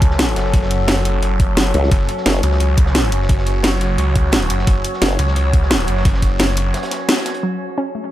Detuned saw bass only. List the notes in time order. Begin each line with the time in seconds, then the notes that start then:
Already playing: C#2
0.36 F#1
1.23 F#1
1.92 F#1
2.43 C#2
2.60 C#2
3.12 F#1
3.98 C#2
4.50 F#1
4.67 F#1
5.19 C#2
5.36 C#2
5.88 F#1